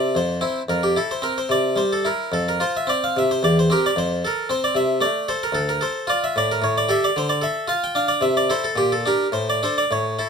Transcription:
Already playing: C3 D5
0.15 F2 C5
0.41 C4 E4
0.69 F2 A#4
0.83 G4
0.96 E4 A4
1.11 C5
1.22 C4 A#4
1.38 C5
1.49 C3 D5
1.76 G3 C5
1.93 A4
2.05 E4 A#4
2.32 F2 A4
2.49 A#4
2.60 F4 C5
2.77 E5
2.87 C4 D5
3.04 F5
3.17 C3 E5
3.31 C5
3.43 E2 D5
3.59 C5
3.70 C4 G4 A#4
3.86 D5
3.96 F2 C5
4.25 A4 A#4
4.50 C4 C5
4.64 D5
4.75 C3 E5
5.01 A3 D5
5.28 A4 C5
5.43 A#4
5.53 D2 A4
5.69 A#4
5.81 A4 C5
6.07 F4 D5
6.24 E5
6.36 A2 D5
6.52 A#4
6.62 A2 C#5
6.78 D5
6.89 G4 A4 E5
7.04 D5
7.16 D3 C5
7.29 D5
7.42 A4 E5
7.68 F4 F5
7.84 G5
7.95 D4 F5
8.08 D5
8.21 C3 E5
8.37 D5
8.50 E4 A4 C5
8.64 A4
8.76 A#2 G4
8.92 A4
9.06 D4 G4 A#4
9.32 A2 C5
9.50 D5
9.63 D4 A4 C5
9.78 D5
9.91 A2 C#5
10.19 E4 A4

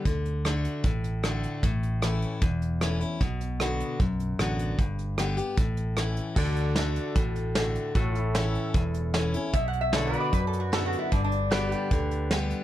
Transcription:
0.05 D2 D3, kick, closed hi-hat
0.25 closed hi-hat
0.45 D3 A3 D4 F#4, cross-stick, closed hi-hat
0.65 closed hi-hat
0.84 A1 A2, kick, closed hi-hat
1.04 closed hi-hat
1.23 D3 A3 D4 F#4, cross-stick, closed hi-hat
1.43 closed hi-hat
1.63 A1 A2, kick, closed hi-hat
1.83 closed hi-hat
2.02 E3 A3 C#4 E4, cross-stick, closed hi-hat
2.22 closed hi-hat
2.42 E1 E2, kick, closed hi-hat
2.62 closed hi-hat
2.81 E3 A3 C#4 E4, cross-stick, closed hi-hat
3.01 C#4 E4, closed hi-hat
3.21 B1 B2, kick, closed hi-hat
3.41 closed hi-hat
3.60 D3 B3 D4 F#4, cross-stick, closed hi-hat
3.80 closed hi-hat
4.00 B1 F#2, kick, closed hi-hat
4.20 closed hi-hat
4.39 A1 D3 B3 D4 F#4, cross-stick, closed hi-hat
4.59 closed hi-hat
4.79 G1 G2, kick, closed hi-hat
4.99 closed hi-hat
5.18 D3 G3 B3 G4, cross-stick, closed hi-hat
5.37 B3 G4, closed hi-hat
5.57 A1 A2, kick, closed hi-hat
5.77 closed hi-hat
5.97 E3 A3 C#4 E4, cross-stick, closed hi-hat
6.17 closed hi-hat
6.36 D2 D3 F#4 A4 D5, kick, crash
6.56 closed hi-hat
6.76 D3 A3 D4 F#4, snare, closed hi-hat
6.96 closed hi-hat
7.16 A1 A2, kick, closed hi-hat
7.36 closed hi-hat
7.55 D3 A3 D4 F#4, snare, closed hi-hat
7.75 closed hi-hat
7.95 A1 A2 F#4 A4 C#5, kick, closed hi-hat
8.15 closed hi-hat
8.20 E4
8.35 E3 A3 C#4 E4, snare, closed hi-hat
8.55 closed hi-hat
8.74 E1 E2, kick, closed hi-hat
8.94 closed hi-hat
9.14 E3 A3 C#4 E4, snare, closed hi-hat
9.34 C#4 E4, closed hi-hat
9.53 B1 B2 E5, kick, closed hi-hat
9.68 F#5
9.73 closed hi-hat
9.81 E5
9.93 D3 B3 D4 E4 F#4 A4 C#5 D5, snare, closed hi-hat
10.07 B4
10.13 D5, closed hi-hat
10.18 F#4 B4 D5
10.33 F#2 B4, kick, closed hi-hat
10.47 A4
10.53 closed hi-hat
10.60 F#4
10.72 D3 B3 D4 F#4 A4, snare, closed hi-hat
10.86 F#4
10.93 closed hi-hat
10.99 E4
11.12 G1 G2 D4, kick, closed hi-hat
11.24 D4
11.32 closed hi-hat
11.51 D3 G3 B3 F#4 G4 B4 D5, snare, closed hi-hat
11.71 G4, closed hi-hat
11.91 D2 D3, kick, closed hi-hat
12.11 closed hi-hat
12.31 D3 G3 B3 G4, snare, closed hi-hat
12.50 closed hi-hat

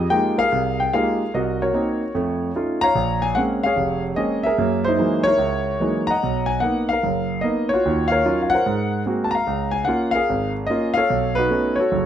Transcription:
Already playing: G4 G#4 D#5
0.10 G#3 A#3 D#4 F4 G4 G5
0.38 G#4 A#4 F5
0.52 C2
0.80 G5
0.93 G#3 A#3 D#4 F4 G4 G#4 A#4 F5
1.34 C2 F#4 A#4 D#5
1.62 F#4 A#4 C#5
1.73 A#3 C4 D#4
2.15 F2 A3
2.56 A3 C#4 D#4 F4
2.81 C#5 F5 A#5
2.95 A#1
3.22 G#5
3.35 G#3 A#3 C4 C#4 F#5
3.63 G#4 C#5 F5
3.76 F1
4.16 G#3 A#3 C4 C#4 D#5
4.43 G#4 A#4 E5
4.58 F#2 A#3
4.84 D#4 E4 C5
4.98 E3 F#3 G#3 A#3 D#4
5.24 E4 A#4 C#5
5.38 C#2
5.80 E3 F#3 G#3 A#3 D#4
6.07 D#5 F#5 A#5
6.23 B1
6.46 G#5
6.60 A#3 B3 D#4 F#5
6.89 F5
6.93 A#4
7.03 F#1
7.41 A#3 B3 D#4 D#5
7.69 C#5
7.74 F4 F#4
7.85 D#2 D#3
8.08 A#4 F5
8.12 C#5
8.25 F#3 C#4 D#4 F4
8.42 F5
8.50 F#5
8.55 A#4 C5
8.66 G#2
9.06 G#3 A#3 C4 F#4
9.24 A5
9.31 A#5
9.35 F5
9.47 C#2
9.71 G#5
9.85 A#3 C#4 F4 F#5
10.11 F5
10.15 G#4 A#4
10.29 G#1
10.66 A#3 C#4 D#5
10.71 F4
10.94 A4 C#5 F5
11.10 B1
11.35 D#4 F#4 B4
11.50 A3 B3 C#4 D#4
11.76 F#4 C#5
11.80 A4
11.92 F#1

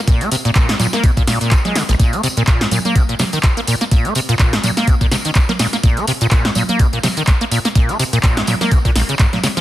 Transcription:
0.08 A#2, kick, closed hi-hat, tambourine
0.21 A#3, closed hi-hat, tambourine
0.32 C3, open hi-hat, tambourine
0.45 A#2, closed hi-hat, tambourine
0.55 A#2, kick, clap, closed hi-hat, tambourine
0.69 G#2, snare, closed hi-hat, tambourine
0.79 A#2, clap, open hi-hat, tambourine, low conga
0.93 A#3, snare, closed hi-hat, tambourine
1.04 A#2, kick, closed hi-hat, tambourine
1.17 A#2, kick, closed hi-hat, tambourine
1.27 A#2, snare, open hi-hat, tambourine
1.41 A#2, closed hi-hat, tambourine
1.51 C#3, kick, clap, closed hi-hat, tambourine
1.65 G#3, snare, closed hi-hat, tambourine, low conga
1.75 C#3, snare, open hi-hat, tambourine
1.89 A#1, snare, closed hi-hat, tambourine
1.99 A#2, kick, closed hi-hat, tambourine
2.13 A#3, closed hi-hat, tambourine
2.23 C3, open hi-hat, tambourine
2.37 A#2, closed hi-hat, tambourine
2.47 A#2, kick, clap, closed hi-hat, tambourine
2.61 G#2, snare, tambourine
2.71 A#2, open hi-hat, tambourine, low conga
2.85 A#3, closed hi-hat, tambourine, low conga
2.96 A#2, kick, closed hi-hat, tambourine
3.09 A#2, closed hi-hat, tambourine
3.19 C3, snare, open hi-hat, tambourine, low conga
3.32 D#3, closed hi-hat, tambourine
3.43 A#2, kick, clap, closed hi-hat, tambourine
3.57 A#3, closed hi-hat, tambourine
3.67 A#2, open hi-hat, tambourine
3.81 A#3, snare, closed hi-hat, tambourine
3.91 A#2, kick, closed hi-hat, tambourine
4.05 A#3, closed hi-hat, tambourine
4.15 C3, open hi-hat, tambourine
4.29 A#2, closed hi-hat, tambourine
4.39 A#2, kick, clap, closed hi-hat, tambourine
4.53 G#2, snare, closed hi-hat, tambourine
4.63 A#2, clap, open hi-hat, tambourine, low conga
4.77 A#3, snare, closed hi-hat, tambourine
4.87 A#2, kick, closed hi-hat, tambourine
5.01 A#2, kick, closed hi-hat, tambourine
5.11 C3, snare, open hi-hat, tambourine
5.25 D#3, closed hi-hat, tambourine
5.35 A#2, kick, clap, closed hi-hat, tambourine
5.49 A#3, snare, closed hi-hat, tambourine, low conga
5.59 A#2, snare, open hi-hat, tambourine
5.73 A#3, snare, closed hi-hat, tambourine
5.83 A#2, kick, closed hi-hat, tambourine
5.97 A#3, closed hi-hat, tambourine
6.07 C3, open hi-hat, tambourine
6.21 A#2, closed hi-hat, tambourine
6.31 A#2, kick, clap, closed hi-hat, tambourine
6.45 G#2, snare, tambourine
6.55 A#2, open hi-hat, tambourine, low conga
6.68 A#3, closed hi-hat, tambourine, low conga
6.79 A#2, kick, closed hi-hat, tambourine
6.93 A#2, closed hi-hat, tambourine
7.03 C3, snare, open hi-hat, tambourine, low conga
7.17 D#3, closed hi-hat, tambourine
7.27 A#2, kick, clap, closed hi-hat, tambourine
7.41 A#3, closed hi-hat, tambourine
7.51 A#2, open hi-hat, tambourine
7.65 A#3, snare, closed hi-hat, tambourine
7.75 A#2, kick, closed hi-hat, tambourine
7.89 A#3, closed hi-hat, tambourine
7.99 C3, open hi-hat, tambourine
8.13 A#2, closed hi-hat, tambourine
8.23 A#2, kick, clap, closed hi-hat, tambourine
8.37 G#2, snare, closed hi-hat, tambourine
8.47 A#2, clap, open hi-hat, tambourine, low conga
8.61 A#3, snare, closed hi-hat, tambourine, low conga
8.71 A#2, kick, closed hi-hat, tambourine
8.85 A#2, kick, closed hi-hat, tambourine
8.96 A#1, snare, open hi-hat, tambourine
9.09 C#3, closed hi-hat, tambourine
9.19 G#2, kick, clap, closed hi-hat, tambourine
9.33 A#2, snare, closed hi-hat, tambourine, low conga
9.43 C#3, snare, open hi-hat, tambourine
9.57 F3, snare, closed hi-hat, tambourine

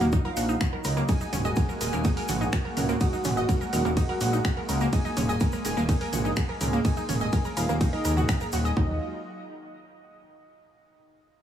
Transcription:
Already playing: F#3 D#4 F#4 F#5
0.01 D#1 A#3 A#4, shaker
0.12 D#4 D#5, kick, shaker
0.25 F4 A#4 F5 A#5
0.37 A#1 F#4 F#5, open hi-hat, shaker
0.49 D#4 D#5, shaker
0.61 F#4 F#5, finger snap, kick, shaker
0.73 A#4 A#5
0.84 C#2 A#4 A#5, open hi-hat, shaker
0.97 A#3 A#4, shaker
1.08 G#3 A#3 D#4 F#4 G#4 D#5 G#5, kick, ride, shaker
1.21 D#4 D#5, shaker
1.33 D#1 C#4 C#5, mid tom, open hi-hat, shaker
1.45 G#4 D#5 G#5 D#6, shaker
1.56 A#4 A#5, kick, ride, shaker
1.69 A#4 A#5, shaker
1.81 D#1 G#4 A#4 G#5 A#5, open hi-hat, shaker
1.92 D#1 A#3 A#4, shaker
2.04 D#4 D#5, kick, ride, shaker
2.17 G#4 A#4 G#5 A#5, open hi-hat
2.28 A#1 F#4 F#5, mid tom, open hi-hat, shaker
2.41 D#4 D#5, shaker
2.53 F#4 F#5, finger snap, kick, ride, shaker
2.65 A#4 A#5
2.77 C#2 A#4 A#5, mid tom, open hi-hat, shaker
2.89 A#3 A#4, shaker
3.01 D#4 F#4 D#5 F#5, kick, ride, shaker
3.13 D#4 D#5, shaker
3.24 D#1 C#4 C#5, mid tom, open hi-hat, shaker
3.37 F#4 D#5 F#5 D#6, shaker
3.49 A#4 A#5, kick, ride, shaker
3.61 A#4 A#5, shaker
3.73 D#1 F#4 A#4 F#5 A#5, open hi-hat, shaker
3.85 D#1 A#3 A#4, shaker
3.97 D#4 D#5, kick, ride, shaker
4.09 F#4 A#4 F#5 A#5
4.21 A#1 F#4 F#5, open hi-hat, shaker
4.33 D#4 D#5, shaker
4.45 F#4 F#5, finger snap, kick, ride, shaker
4.57 A#4 A#5
4.69 C#2 A#4 A#5, open hi-hat, shaker
4.81 A#3 A#4, shaker
4.93 D#4 G#4 D#5 G#5, kick, ride, shaker
5.05 D#4 D#5, shaker
5.17 D#1 C#4 C#5, mid tom, open hi-hat, shaker
5.29 G#4 D#5 G#5 D#6, shaker
5.40 A#4 A#5, kick, ride, shaker
5.52 A#4 A#5, shaker
5.65 D#1 G#4 A#4 G#5 A#5, open hi-hat, shaker
5.77 D#1 A#3 A#4, shaker
5.89 D#4 D#5, kick, ride, shaker
6.01 G#4 A#4 G#5 A#5, open hi-hat
6.13 A#1 F#4 F#5, mid tom, open hi-hat, shaker
6.25 D#4 D#5, shaker
6.36 F#4 F#5, finger snap, kick, ride, shaker
6.49 A#4 A#5
6.61 C#2 A#4 A#5, mid tom, open hi-hat, shaker
6.73 A#3 A#4, shaker
6.85 D#4 G#4 D#5 G#5, kick, ride, shaker
6.97 D#4 D#5, shaker
7.09 D#1 C#4 C#5, mid tom, open hi-hat, shaker
7.20 G#4 D#5 G#5 D#6, shaker
7.33 A#4 A#5, kick, ride, shaker
7.45 A#4 A#5, shaker
7.57 D#1 F4 A#4 F5 A#5, open hi-hat, shaker
7.69 D#1 A#3 A#4, shaker
7.81 D#4 D#5, kick, ride, shaker
7.93 D#4 A#4 D#5 A#5
8.05 D#2 A#4 A#5, open hi-hat, shaker
8.17 F#4 F#5, mid tom, shaker
8.29 A#4 A#5, finger snap, kick, open hi-hat, ride, shaker
8.40 A#4 A#5, shaker
8.52 D#1 F#4 F#5, open hi-hat, shaker
8.65 D#5 D#6, shaker
8.77 D#1 F#3 D#4 F4 D#5, kick

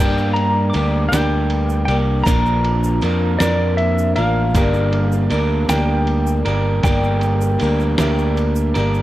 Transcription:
Already playing: G2 D4 G5
0.00 G2 D3 G3 A#3 D4 G4 A#4 D5
0.18 shaker
0.34 A#5, ride
0.70 G3 D6
0.74 D2 A#3 D4 G4, ride
1.09 D2 D4 G4 G5
1.13 G2 D3 G3 A#3 D4 G4 A#4 D5, snare, ride, shaker
1.50 ride
1.69 shaker
1.85 C2 D4 G4 G5, ride
1.90 G3 A#3
2.24 A#1 A#2 D3 F3 A#3 D4 F4 A#4 D5 A#5, kick, ride, shaker
2.46 shaker
2.64 ride
2.84 shaker
3.01 F2 F3 A#3 D4 A#4, ride
3.39 F2 D3 F3 A#3 D4 F4 A#4 D5, snare, ride, shaker
3.43 A#2 D5
3.77 E5, ride
3.98 shaker
4.16 A1 F3 A#3 D4 A#4 F5, ride
4.54 G1 G2 D3 G3 A#3 D4 G4 A#4 D5, kick, ride, shaker
4.74 shaker
4.93 ride
5.12 shaker
5.30 D2 G3 A#3 D4 G4 A#4, ride
5.68 D2 G2 D3 G3 A#3 D4 G4 A#4 D5 G5, snare, ride, shaker
6.07 ride
6.27 shaker
6.45 G1 G3 A#3 D4 G4 A#4, ride
6.83 G1 G2 D3 G3 A#3 D4 G4 A#4 D5 G5, kick, ride, shaker
7.04 shaker
7.21 ride, shaker
7.41 shaker
7.60 D2 G3 A#3 D4 A#4, ride
7.64 G4
7.80 shaker
7.98 D2 D3 G3 A#3 D4 G4 A#4 E5, snare, ride, shaker
8.02 G2
8.18 shaker
8.37 ride, shaker
8.56 shaker
8.74 G1 A#3 D4 G4 A#4, ride, shaker
8.79 G3
8.94 shaker

